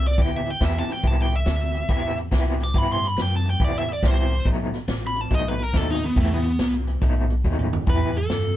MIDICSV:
0, 0, Header, 1, 7, 480
1, 0, Start_track
1, 0, Key_signature, 1, "minor"
1, 0, Tempo, 427350
1, 1166, Time_signature, 4, 2, 24, 8
1, 9622, End_track
2, 0, Start_track
2, 0, Title_t, "Lead electric guitar"
2, 0, Program_c, 0, 29
2, 80, Note_on_c, 0, 74, 76
2, 218, Note_off_c, 0, 74, 0
2, 246, Note_on_c, 0, 79, 88
2, 407, Note_off_c, 0, 79, 0
2, 407, Note_on_c, 0, 76, 85
2, 567, Note_off_c, 0, 76, 0
2, 567, Note_on_c, 0, 79, 79
2, 702, Note_off_c, 0, 79, 0
2, 730, Note_on_c, 0, 76, 76
2, 864, Note_off_c, 0, 76, 0
2, 892, Note_on_c, 0, 81, 77
2, 1025, Note_off_c, 0, 81, 0
2, 1046, Note_on_c, 0, 79, 77
2, 1205, Note_off_c, 0, 79, 0
2, 1205, Note_on_c, 0, 81, 90
2, 1341, Note_off_c, 0, 81, 0
2, 1370, Note_on_c, 0, 79, 91
2, 1504, Note_off_c, 0, 79, 0
2, 1523, Note_on_c, 0, 76, 97
2, 2437, Note_off_c, 0, 76, 0
2, 2961, Note_on_c, 0, 86, 103
2, 3124, Note_off_c, 0, 86, 0
2, 3124, Note_on_c, 0, 83, 89
2, 3261, Note_off_c, 0, 83, 0
2, 3283, Note_on_c, 0, 84, 92
2, 3448, Note_off_c, 0, 84, 0
2, 3448, Note_on_c, 0, 83, 89
2, 3584, Note_off_c, 0, 83, 0
2, 3614, Note_on_c, 0, 79, 88
2, 3747, Note_off_c, 0, 79, 0
2, 3779, Note_on_c, 0, 81, 87
2, 3909, Note_off_c, 0, 81, 0
2, 3932, Note_on_c, 0, 79, 83
2, 4066, Note_off_c, 0, 79, 0
2, 4094, Note_on_c, 0, 74, 89
2, 4226, Note_off_c, 0, 74, 0
2, 4253, Note_on_c, 0, 76, 83
2, 4386, Note_off_c, 0, 76, 0
2, 4416, Note_on_c, 0, 74, 87
2, 4547, Note_off_c, 0, 74, 0
2, 4577, Note_on_c, 0, 72, 99
2, 5018, Note_off_c, 0, 72, 0
2, 5691, Note_on_c, 0, 83, 83
2, 5850, Note_off_c, 0, 83, 0
2, 5850, Note_on_c, 0, 81, 82
2, 5984, Note_off_c, 0, 81, 0
2, 6005, Note_on_c, 0, 75, 99
2, 6141, Note_off_c, 0, 75, 0
2, 6159, Note_on_c, 0, 71, 85
2, 6298, Note_off_c, 0, 71, 0
2, 6330, Note_on_c, 0, 70, 87
2, 6475, Note_off_c, 0, 70, 0
2, 6475, Note_on_c, 0, 69, 98
2, 6616, Note_off_c, 0, 69, 0
2, 6636, Note_on_c, 0, 63, 94
2, 6776, Note_off_c, 0, 63, 0
2, 6803, Note_on_c, 0, 59, 86
2, 6940, Note_off_c, 0, 59, 0
2, 6964, Note_on_c, 0, 57, 81
2, 7100, Note_off_c, 0, 57, 0
2, 7119, Note_on_c, 0, 59, 93
2, 7567, Note_off_c, 0, 59, 0
2, 8868, Note_on_c, 0, 71, 97
2, 9180, Note_off_c, 0, 71, 0
2, 9186, Note_on_c, 0, 69, 99
2, 9622, Note_off_c, 0, 69, 0
2, 9622, End_track
3, 0, Start_track
3, 0, Title_t, "Clean electric guitar"
3, 0, Program_c, 1, 27
3, 203, Note_on_c, 1, 52, 79
3, 210, Note_on_c, 1, 59, 81
3, 212, Note_on_c, 1, 64, 77
3, 216, Note_on_c, 1, 67, 84
3, 507, Note_off_c, 1, 67, 0
3, 513, Note_off_c, 1, 64, 0
3, 515, Note_off_c, 1, 59, 0
3, 519, Note_off_c, 1, 52, 0
3, 680, Note_on_c, 1, 52, 73
3, 686, Note_on_c, 1, 59, 78
3, 689, Note_on_c, 1, 64, 88
3, 694, Note_on_c, 1, 67, 96
3, 987, Note_off_c, 1, 67, 0
3, 990, Note_off_c, 1, 64, 0
3, 994, Note_off_c, 1, 59, 0
3, 999, Note_off_c, 1, 52, 0
3, 1164, Note_on_c, 1, 48, 82
3, 1169, Note_on_c, 1, 59, 81
3, 1172, Note_on_c, 1, 64, 85
3, 1179, Note_on_c, 1, 67, 90
3, 1469, Note_off_c, 1, 67, 0
3, 1474, Note_off_c, 1, 64, 0
3, 1477, Note_off_c, 1, 59, 0
3, 1481, Note_off_c, 1, 48, 0
3, 2122, Note_on_c, 1, 48, 76
3, 2128, Note_on_c, 1, 59, 78
3, 2134, Note_on_c, 1, 64, 79
3, 2137, Note_on_c, 1, 67, 87
3, 2427, Note_off_c, 1, 67, 0
3, 2431, Note_off_c, 1, 64, 0
3, 2434, Note_off_c, 1, 59, 0
3, 2440, Note_off_c, 1, 48, 0
3, 2599, Note_on_c, 1, 48, 81
3, 2602, Note_on_c, 1, 59, 83
3, 2608, Note_on_c, 1, 64, 85
3, 2612, Note_on_c, 1, 67, 90
3, 2906, Note_off_c, 1, 67, 0
3, 2914, Note_off_c, 1, 64, 0
3, 2918, Note_off_c, 1, 59, 0
3, 2919, Note_off_c, 1, 48, 0
3, 3082, Note_on_c, 1, 48, 76
3, 3085, Note_on_c, 1, 59, 77
3, 3090, Note_on_c, 1, 64, 94
3, 3095, Note_on_c, 1, 67, 99
3, 3387, Note_off_c, 1, 67, 0
3, 3391, Note_off_c, 1, 64, 0
3, 3397, Note_off_c, 1, 59, 0
3, 3400, Note_off_c, 1, 48, 0
3, 4044, Note_on_c, 1, 48, 83
3, 4049, Note_on_c, 1, 59, 83
3, 4056, Note_on_c, 1, 64, 92
3, 4057, Note_on_c, 1, 67, 87
3, 4350, Note_off_c, 1, 67, 0
3, 4355, Note_off_c, 1, 64, 0
3, 4359, Note_off_c, 1, 59, 0
3, 4361, Note_off_c, 1, 48, 0
3, 4522, Note_on_c, 1, 48, 79
3, 4529, Note_on_c, 1, 59, 79
3, 4533, Note_on_c, 1, 64, 89
3, 4536, Note_on_c, 1, 67, 89
3, 4828, Note_off_c, 1, 67, 0
3, 4832, Note_off_c, 1, 64, 0
3, 4835, Note_off_c, 1, 59, 0
3, 4840, Note_off_c, 1, 48, 0
3, 5002, Note_on_c, 1, 47, 83
3, 5006, Note_on_c, 1, 54, 85
3, 5011, Note_on_c, 1, 57, 84
3, 5016, Note_on_c, 1, 63, 96
3, 5307, Note_off_c, 1, 63, 0
3, 5314, Note_off_c, 1, 57, 0
3, 5318, Note_off_c, 1, 54, 0
3, 5320, Note_off_c, 1, 47, 0
3, 5960, Note_on_c, 1, 47, 82
3, 5964, Note_on_c, 1, 54, 88
3, 5968, Note_on_c, 1, 57, 94
3, 5971, Note_on_c, 1, 63, 101
3, 6264, Note_off_c, 1, 63, 0
3, 6267, Note_off_c, 1, 57, 0
3, 6271, Note_off_c, 1, 54, 0
3, 6278, Note_off_c, 1, 47, 0
3, 6438, Note_on_c, 1, 47, 76
3, 6443, Note_on_c, 1, 54, 90
3, 6449, Note_on_c, 1, 57, 83
3, 6454, Note_on_c, 1, 63, 91
3, 6741, Note_off_c, 1, 63, 0
3, 6747, Note_off_c, 1, 57, 0
3, 6749, Note_off_c, 1, 54, 0
3, 6757, Note_off_c, 1, 47, 0
3, 6918, Note_on_c, 1, 52, 86
3, 6924, Note_on_c, 1, 59, 89
3, 6929, Note_on_c, 1, 64, 90
3, 6933, Note_on_c, 1, 67, 90
3, 7225, Note_off_c, 1, 67, 0
3, 7229, Note_off_c, 1, 64, 0
3, 7234, Note_off_c, 1, 59, 0
3, 7236, Note_off_c, 1, 52, 0
3, 7881, Note_on_c, 1, 47, 85
3, 7885, Note_on_c, 1, 54, 86
3, 7891, Note_on_c, 1, 57, 91
3, 7895, Note_on_c, 1, 63, 99
3, 8187, Note_off_c, 1, 63, 0
3, 8190, Note_off_c, 1, 57, 0
3, 8195, Note_off_c, 1, 54, 0
3, 8197, Note_off_c, 1, 47, 0
3, 8363, Note_on_c, 1, 47, 86
3, 8366, Note_on_c, 1, 54, 82
3, 8370, Note_on_c, 1, 57, 81
3, 8375, Note_on_c, 1, 63, 92
3, 8658, Note_off_c, 1, 63, 0
3, 8663, Note_off_c, 1, 57, 0
3, 8670, Note_off_c, 1, 54, 0
3, 8678, Note_off_c, 1, 47, 0
3, 8836, Note_on_c, 1, 52, 73
3, 8842, Note_on_c, 1, 59, 77
3, 8846, Note_on_c, 1, 64, 82
3, 8851, Note_on_c, 1, 67, 88
3, 9143, Note_off_c, 1, 67, 0
3, 9146, Note_off_c, 1, 64, 0
3, 9153, Note_off_c, 1, 59, 0
3, 9155, Note_off_c, 1, 52, 0
3, 9622, End_track
4, 0, Start_track
4, 0, Title_t, "Upright bass"
4, 0, Program_c, 2, 32
4, 0, Note_on_c, 2, 36, 93
4, 187, Note_off_c, 2, 36, 0
4, 205, Note_on_c, 2, 38, 78
4, 671, Note_off_c, 2, 38, 0
4, 681, Note_on_c, 2, 40, 79
4, 977, Note_off_c, 2, 40, 0
4, 1165, Note_on_c, 2, 36, 95
4, 1631, Note_off_c, 2, 36, 0
4, 1639, Note_on_c, 2, 38, 100
4, 2109, Note_off_c, 2, 38, 0
4, 2122, Note_on_c, 2, 40, 80
4, 2590, Note_off_c, 2, 40, 0
4, 2601, Note_on_c, 2, 36, 85
4, 3070, Note_off_c, 2, 36, 0
4, 3080, Note_on_c, 2, 43, 91
4, 3549, Note_off_c, 2, 43, 0
4, 3556, Note_on_c, 2, 42, 99
4, 4027, Note_off_c, 2, 42, 0
4, 4042, Note_on_c, 2, 40, 80
4, 4510, Note_off_c, 2, 40, 0
4, 4522, Note_on_c, 2, 36, 87
4, 4990, Note_off_c, 2, 36, 0
4, 5002, Note_on_c, 2, 35, 91
4, 5298, Note_off_c, 2, 35, 0
4, 5478, Note_on_c, 2, 33, 94
4, 5947, Note_off_c, 2, 33, 0
4, 5960, Note_on_c, 2, 35, 88
4, 6428, Note_off_c, 2, 35, 0
4, 6445, Note_on_c, 2, 39, 90
4, 6910, Note_off_c, 2, 39, 0
4, 6923, Note_on_c, 2, 40, 94
4, 7389, Note_off_c, 2, 40, 0
4, 7401, Note_on_c, 2, 36, 95
4, 7868, Note_off_c, 2, 36, 0
4, 7884, Note_on_c, 2, 35, 92
4, 8349, Note_off_c, 2, 35, 0
4, 8361, Note_on_c, 2, 39, 94
4, 8828, Note_off_c, 2, 39, 0
4, 8841, Note_on_c, 2, 40, 87
4, 9308, Note_off_c, 2, 40, 0
4, 9320, Note_on_c, 2, 43, 94
4, 9622, Note_off_c, 2, 43, 0
4, 9622, End_track
5, 0, Start_track
5, 0, Title_t, "Muted clean electric guitar strokes"
5, 37, Note_on_c, 9, 29, 45
5, 149, Note_off_c, 9, 29, 0
5, 520, Note_on_c, 9, 29, 41
5, 633, Note_off_c, 9, 29, 0
5, 1000, Note_on_c, 9, 29, 44
5, 1112, Note_off_c, 9, 29, 0
5, 1482, Note_on_c, 9, 29, 53
5, 1595, Note_off_c, 9, 29, 0
5, 1646, Note_on_c, 9, 29, 42
5, 1759, Note_off_c, 9, 29, 0
5, 1964, Note_on_c, 9, 29, 47
5, 2076, Note_off_c, 9, 29, 0
5, 2441, Note_on_c, 9, 29, 38
5, 2553, Note_off_c, 9, 29, 0
5, 2920, Note_on_c, 9, 29, 49
5, 3032, Note_off_c, 9, 29, 0
5, 3400, Note_on_c, 9, 29, 54
5, 3513, Note_off_c, 9, 29, 0
5, 3565, Note_on_c, 9, 29, 42
5, 3678, Note_off_c, 9, 29, 0
5, 3882, Note_on_c, 9, 29, 51
5, 3994, Note_off_c, 9, 29, 0
5, 4363, Note_on_c, 9, 29, 43
5, 4475, Note_off_c, 9, 29, 0
5, 4841, Note_on_c, 9, 29, 40
5, 4954, Note_off_c, 9, 29, 0
5, 5321, Note_on_c, 9, 29, 58
5, 5433, Note_off_c, 9, 29, 0
5, 5484, Note_on_c, 9, 29, 49
5, 5596, Note_off_c, 9, 29, 0
5, 5797, Note_on_c, 9, 29, 54
5, 5909, Note_off_c, 9, 29, 0
5, 6277, Note_on_c, 9, 29, 49
5, 6390, Note_off_c, 9, 29, 0
5, 6755, Note_on_c, 9, 29, 47
5, 6867, Note_off_c, 9, 29, 0
5, 7238, Note_on_c, 9, 29, 57
5, 7351, Note_off_c, 9, 29, 0
5, 7402, Note_on_c, 9, 29, 45
5, 7515, Note_off_c, 9, 29, 0
5, 7720, Note_on_c, 9, 29, 48
5, 7832, Note_off_c, 9, 29, 0
5, 8201, Note_on_c, 9, 29, 49
5, 8313, Note_off_c, 9, 29, 0
5, 8671, Note_on_c, 9, 29, 46
5, 8784, Note_off_c, 9, 29, 0
5, 9156, Note_on_c, 9, 29, 46
5, 9269, Note_off_c, 9, 29, 0
5, 9318, Note_on_c, 9, 29, 40
5, 9430, Note_off_c, 9, 29, 0
5, 9622, End_track
6, 0, Start_track
6, 0, Title_t, "Muted upright bass strokes"
6, 995, Note_on_c, 9, 29, 41
6, 1107, Note_off_c, 9, 29, 0
6, 5312, Note_on_c, 9, 29, 37
6, 5424, Note_off_c, 9, 29, 0
6, 9622, End_track
7, 0, Start_track
7, 0, Title_t, "Drums"
7, 40, Note_on_c, 9, 42, 56
7, 153, Note_off_c, 9, 42, 0
7, 204, Note_on_c, 9, 36, 102
7, 206, Note_on_c, 9, 42, 77
7, 210, Note_on_c, 9, 38, 31
7, 316, Note_off_c, 9, 36, 0
7, 318, Note_off_c, 9, 42, 0
7, 322, Note_off_c, 9, 38, 0
7, 523, Note_on_c, 9, 42, 57
7, 636, Note_off_c, 9, 42, 0
7, 683, Note_on_c, 9, 36, 74
7, 688, Note_on_c, 9, 42, 80
7, 692, Note_on_c, 9, 38, 111
7, 796, Note_off_c, 9, 36, 0
7, 800, Note_off_c, 9, 42, 0
7, 805, Note_off_c, 9, 38, 0
7, 1004, Note_on_c, 9, 42, 60
7, 1009, Note_on_c, 9, 38, 32
7, 1117, Note_off_c, 9, 42, 0
7, 1121, Note_off_c, 9, 38, 0
7, 1163, Note_on_c, 9, 36, 105
7, 1166, Note_on_c, 9, 42, 79
7, 1276, Note_off_c, 9, 36, 0
7, 1278, Note_off_c, 9, 42, 0
7, 1476, Note_on_c, 9, 42, 65
7, 1589, Note_off_c, 9, 42, 0
7, 1639, Note_on_c, 9, 42, 82
7, 1643, Note_on_c, 9, 38, 110
7, 1751, Note_off_c, 9, 42, 0
7, 1755, Note_off_c, 9, 38, 0
7, 1956, Note_on_c, 9, 42, 60
7, 2068, Note_off_c, 9, 42, 0
7, 2122, Note_on_c, 9, 36, 103
7, 2123, Note_on_c, 9, 42, 75
7, 2128, Note_on_c, 9, 38, 31
7, 2234, Note_off_c, 9, 36, 0
7, 2235, Note_off_c, 9, 42, 0
7, 2240, Note_off_c, 9, 38, 0
7, 2442, Note_on_c, 9, 42, 66
7, 2554, Note_off_c, 9, 42, 0
7, 2602, Note_on_c, 9, 36, 78
7, 2604, Note_on_c, 9, 42, 90
7, 2609, Note_on_c, 9, 38, 99
7, 2714, Note_off_c, 9, 36, 0
7, 2717, Note_off_c, 9, 42, 0
7, 2721, Note_off_c, 9, 38, 0
7, 2923, Note_on_c, 9, 42, 58
7, 2928, Note_on_c, 9, 38, 33
7, 3035, Note_off_c, 9, 42, 0
7, 3040, Note_off_c, 9, 38, 0
7, 3081, Note_on_c, 9, 36, 106
7, 3083, Note_on_c, 9, 42, 72
7, 3193, Note_off_c, 9, 36, 0
7, 3195, Note_off_c, 9, 42, 0
7, 3404, Note_on_c, 9, 42, 62
7, 3408, Note_on_c, 9, 38, 30
7, 3516, Note_off_c, 9, 42, 0
7, 3520, Note_off_c, 9, 38, 0
7, 3566, Note_on_c, 9, 42, 82
7, 3571, Note_on_c, 9, 38, 115
7, 3679, Note_off_c, 9, 42, 0
7, 3683, Note_off_c, 9, 38, 0
7, 3883, Note_on_c, 9, 42, 63
7, 3995, Note_off_c, 9, 42, 0
7, 4043, Note_on_c, 9, 36, 107
7, 4043, Note_on_c, 9, 42, 78
7, 4155, Note_off_c, 9, 36, 0
7, 4155, Note_off_c, 9, 42, 0
7, 4363, Note_on_c, 9, 42, 60
7, 4476, Note_off_c, 9, 42, 0
7, 4523, Note_on_c, 9, 36, 82
7, 4523, Note_on_c, 9, 42, 84
7, 4528, Note_on_c, 9, 38, 107
7, 4635, Note_off_c, 9, 36, 0
7, 4635, Note_off_c, 9, 42, 0
7, 4640, Note_off_c, 9, 38, 0
7, 4841, Note_on_c, 9, 42, 63
7, 4954, Note_off_c, 9, 42, 0
7, 5003, Note_on_c, 9, 36, 99
7, 5003, Note_on_c, 9, 42, 75
7, 5115, Note_off_c, 9, 36, 0
7, 5115, Note_off_c, 9, 42, 0
7, 5319, Note_on_c, 9, 42, 61
7, 5324, Note_on_c, 9, 38, 34
7, 5432, Note_off_c, 9, 42, 0
7, 5436, Note_off_c, 9, 38, 0
7, 5480, Note_on_c, 9, 42, 91
7, 5485, Note_on_c, 9, 38, 117
7, 5593, Note_off_c, 9, 42, 0
7, 5597, Note_off_c, 9, 38, 0
7, 5800, Note_on_c, 9, 42, 62
7, 5912, Note_off_c, 9, 42, 0
7, 5961, Note_on_c, 9, 42, 79
7, 5963, Note_on_c, 9, 36, 99
7, 5965, Note_on_c, 9, 38, 32
7, 6073, Note_off_c, 9, 42, 0
7, 6075, Note_off_c, 9, 36, 0
7, 6078, Note_off_c, 9, 38, 0
7, 6279, Note_on_c, 9, 42, 68
7, 6391, Note_off_c, 9, 42, 0
7, 6442, Note_on_c, 9, 36, 84
7, 6443, Note_on_c, 9, 42, 89
7, 6447, Note_on_c, 9, 38, 115
7, 6554, Note_off_c, 9, 36, 0
7, 6555, Note_off_c, 9, 42, 0
7, 6560, Note_off_c, 9, 38, 0
7, 6762, Note_on_c, 9, 42, 65
7, 6767, Note_on_c, 9, 38, 32
7, 6874, Note_off_c, 9, 42, 0
7, 6879, Note_off_c, 9, 38, 0
7, 6922, Note_on_c, 9, 36, 105
7, 6922, Note_on_c, 9, 42, 76
7, 7034, Note_off_c, 9, 36, 0
7, 7034, Note_off_c, 9, 42, 0
7, 7236, Note_on_c, 9, 42, 68
7, 7349, Note_off_c, 9, 42, 0
7, 7400, Note_on_c, 9, 42, 89
7, 7405, Note_on_c, 9, 38, 105
7, 7513, Note_off_c, 9, 42, 0
7, 7517, Note_off_c, 9, 38, 0
7, 7720, Note_on_c, 9, 42, 65
7, 7832, Note_off_c, 9, 42, 0
7, 7882, Note_on_c, 9, 36, 105
7, 7883, Note_on_c, 9, 42, 75
7, 7994, Note_off_c, 9, 36, 0
7, 7995, Note_off_c, 9, 42, 0
7, 8200, Note_on_c, 9, 42, 60
7, 8313, Note_off_c, 9, 42, 0
7, 8362, Note_on_c, 9, 36, 76
7, 8474, Note_off_c, 9, 36, 0
7, 8523, Note_on_c, 9, 45, 68
7, 8636, Note_off_c, 9, 45, 0
7, 8683, Note_on_c, 9, 43, 112
7, 8795, Note_off_c, 9, 43, 0
7, 8840, Note_on_c, 9, 42, 71
7, 8842, Note_on_c, 9, 36, 105
7, 8952, Note_off_c, 9, 42, 0
7, 8954, Note_off_c, 9, 36, 0
7, 9157, Note_on_c, 9, 42, 57
7, 9269, Note_off_c, 9, 42, 0
7, 9317, Note_on_c, 9, 42, 88
7, 9322, Note_on_c, 9, 38, 113
7, 9429, Note_off_c, 9, 42, 0
7, 9434, Note_off_c, 9, 38, 0
7, 9622, End_track
0, 0, End_of_file